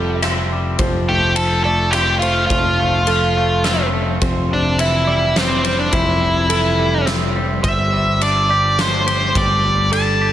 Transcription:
0.00 0.76 F1 medium
0.00 0.51 F2 medium
0.00 0.80 C3 medium
0.00 0.80 F3 soft
0.00 0.52 G3 soft
0.00 0.23 C4 medium
0.00 0.22 A4 medium
0.00 0.79 C5 medium
0.22 1.94 C4 medium
0.22 0.78 E5 medium
0.22 cross-stick medium
0.22 ride soft
0.52 0.84 G3 soft
0.79 2.47 F1 medium
0.79 1.36 F3 medium
0.79 1.65 C5 medium
0.79 kick medium
0.79 ride soft
1.09 1.65 A3 soft
1.09 1.35 G4 medium
1.36 2.50 F3 soft
1.36 1.62 A4 medium
1.36 ride medium
1.64 2.22 A3 medium
1.64 1.94 A4 medium
1.64 2.22 D5 medium
1.91 3.65 C4 medium
1.91 2.19 G4 medium
1.91 cross-stick medium
1.91 ride medium
2.19 2.79 A3 medium
2.19 2.45 F4 medium
2.19 4.22 C5 medium
2.19 ride soft
2.46 4.18 F1 medium
2.46 3.87 F4 medium
2.46 kick medium
2.46 ride soft
2.51 3.07 F3 medium
2.80 3.36 A3 soft
3.07 4.22 F3 medium
3.07 3.64 A4 medium
3.07 ride soft
3.37 3.92 A3 soft
3.64 5.36 C4 medium
3.64 4.21 E5 medium
3.64 snare medium
3.64 ride soft
3.93 4.21 A3 medium
4.21 5.89 F1 medium
4.21 5.64 F2 medium
4.21 5.07 C5 medium
4.21 kick medium
4.21 ride soft
4.51 5.93 C3 medium
4.51 4.80 D4 medium
4.79 6.21 E3 medium
4.79 5.38 E4 medium
4.79 ride medium
5.07 5.63 G3 medium
5.07 5.64 D5 medium
5.36 6.79 C4 medium
5.36 5.76 C4 medium
5.36 snare medium
5.36 ride medium
5.64 6.78 G3 medium
5.64 6.21 C5 medium
5.64 ride medium
5.80 5.93 D4 medium
5.92 7.61 F1 medium
5.92 7.36 F2 medium
5.92 7.07 E4 medium
5.92 kick medium
5.92 ride soft
6.21 7.64 C3 medium
6.49 7.64 E3 medium
6.49 7.06 A4 medium
6.49 ride medium
6.79 7.35 G3 medium
7.07 7.64 C4 medium
7.07 7.63 E5 medium
7.07 snare medium
7.07 ride soft
7.36 7.63 G3 medium
7.63 9.32 G1 medium
7.63 7.91 G3 soft
7.63 8.20 C5 medium
7.63 8.22 E5 medium
7.63 kick medium
7.63 ride medium
7.93 9.34 G3 soft
8.21 9.64 D4 medium
8.21 8.81 D5 medium
8.21 ride soft
8.49 9.06 G4 medium
8.49 9.06 D5 medium
8.78 10.25 A3 medium
8.78 9.38 C5 medium
8.78 snare medium
8.78 ride medium
9.06 10.20 G4 medium
9.06 9.64 C5 medium
9.06 ride soft
9.35 10.33 G1 medium
9.35 9.63 G3 medium
9.35 9.89 D5 medium
9.35 kick loud
9.35 ride soft
9.64 10.33 G3 medium
9.92 10.33 D4 soft
9.92 10.33 A4 medium
9.92 10.33 A5 medium
9.92 ride medium
10.21 10.33 G4 medium

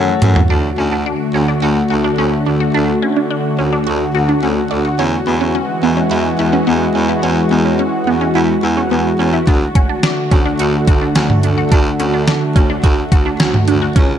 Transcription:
0.00 0.14 F#2 loud
0.00 0.46 E3 medium
0.00 0.48 A3 medium
0.00 0.38 F#4 medium
0.00 0.48 F#4 medium
0.00 0.38 A4 medium
0.00 0.38 C#5 loud
0.22 0.42 F#2 loud
0.22 closed hi-hat medium
0.22 mid tom loud
0.36 floor tom loud
0.50 0.70 D2 loud
0.50 4.95 D3 medium
0.50 4.95 A3 medium
0.50 0.75 D4 medium
0.50 13.92 F#4 medium
0.78 1.08 D2 loud
0.78 0.90 C#4 medium
0.92 1.04 D4 medium
1.06 1.31 D4 medium
1.34 1.54 D2 loud
1.34 1.47 C#4 medium
1.48 1.61 D4 medium
1.62 1.82 D2 loud
1.62 1.87 F#4 medium
1.90 2.10 D2 loud
1.90 2.03 F#4 medium
2.04 2.17 D4 medium
2.18 2.38 D2 loud
2.18 2.43 C#4 medium
2.46 2.66 D2 medium
2.46 2.59 D4 medium
2.60 2.73 F#4 medium
2.74 2.94 D2 loud
2.74 2.99 D4 medium
3.02 3.15 C#4 medium
3.16 3.29 D4 medium
3.30 3.55 D4 medium
3.59 3.78 D2 medium
3.59 3.71 C#4 medium
3.73 3.85 D4 medium
3.87 4.06 D2 loud
3.87 4.11 F#4 medium
4.15 4.34 D2 medium
4.15 4.27 F#4 medium
4.29 4.41 D4 medium
4.43 4.62 D2 medium
4.43 4.67 C#4 medium
4.71 4.90 D2 loud
4.71 4.83 D4 medium
4.85 4.97 F#4 medium
4.99 5.18 E2 loud
4.99 9.43 E3 medium
4.99 9.43 G#3 medium
4.99 5.23 C#4 medium
5.27 5.56 E2 loud
5.27 5.39 B3 medium
5.41 5.53 C#4 medium
5.55 5.79 C#4 medium
5.83 6.02 E2 loud
5.83 5.95 B3 medium
5.97 6.09 C#4 medium
6.11 6.30 E2 loud
6.11 6.35 E4 medium
6.39 6.58 E2 medium
6.39 6.51 E4 medium
6.53 6.65 C#4 medium
6.67 6.87 E2 loud
6.67 6.92 B3 medium
6.95 7.15 E2 loud
6.95 7.07 C#4 medium
7.09 7.21 E4 medium
7.23 7.43 E2 loud
7.23 7.48 C#4 loud
7.51 7.80 E2 loud
7.51 7.63 B3 medium
7.65 7.77 C#4 medium
7.79 8.04 C#4 medium
8.07 8.27 E2 medium
8.07 8.19 B3 medium
8.21 8.33 C#4 medium
8.35 8.55 E2 loud
8.35 8.60 E4 medium
8.63 8.83 E2 loud
8.63 8.75 E4 medium
8.77 8.90 C#4 medium
8.91 9.11 E2 loud
8.91 9.16 B3 medium
9.19 9.39 E2 loud
9.19 9.32 C#4 medium
9.33 9.46 E4 medium
9.47 9.67 D2 loud
9.47 13.92 D3 medium
9.47 13.92 A3 medium
9.47 9.72 D4 medium
9.47 kick loud
9.47 closed hi-hat medium
9.75 9.88 C#4 medium
9.75 kick loud
9.75 closed hi-hat medium
9.89 10.02 D4 medium
10.03 10.28 D4 medium
10.03 snare loud
10.03 closed hi-hat medium
10.31 10.51 D2 loud
10.31 10.44 C#4 medium
10.31 kick loud
10.31 closed hi-hat medium
10.46 10.58 D4 medium
10.59 10.79 D2 loud
10.59 10.84 F#4 medium
10.59 closed hi-hat medium
10.87 11.07 D2 loud
10.87 11.00 F#4 medium
10.87 kick medium
10.87 closed hi-hat medium
11.02 11.14 D4 medium
11.15 11.35 D2 loud
11.15 11.40 C#4 medium
11.15 snare loud
11.15 closed hi-hat medium
11.30 mid tom medium
11.43 11.63 D2 medium
11.43 11.56 D4 medium
11.43 closed hi-hat medium
11.58 11.70 F#4 medium
11.72 11.91 D2 loud
11.72 11.96 D4 loud
11.72 kick loud
11.72 closed hi-hat medium
12.00 12.29 D2 loud
12.00 12.12 C#4 medium
12.00 closed hi-hat medium
12.14 12.26 D4 medium
12.28 12.52 D4 medium
12.28 snare loud
12.28 closed hi-hat medium
12.56 12.75 D2 medium
12.56 12.68 C#4 medium
12.56 kick medium
12.56 closed hi-hat medium
12.70 12.82 D4 medium
12.84 13.03 D2 loud
12.84 13.08 F#4 medium
12.84 kick medium
12.84 closed hi-hat medium
13.12 13.31 D2 medium
13.12 13.24 F#4 medium
13.12 kick loud
13.12 closed hi-hat medium
13.26 13.38 D4 medium
13.40 13.59 D2 loud
13.40 13.64 C#4 medium
13.40 snare loud
13.40 closed hi-hat medium
13.54 mid tom medium
13.68 13.88 D2 loud
13.68 13.80 D4 medium
13.68 closed hi-hat medium
13.82 13.94 F#4 medium
13.96 14.15 C#2 loud
13.96 14.19 A2 medium
13.96 14.19 G#3 medium
13.96 14.19 C#4 loud
13.96 14.19 F#4 medium
13.96 kick loud
13.96 closed hi-hat medium

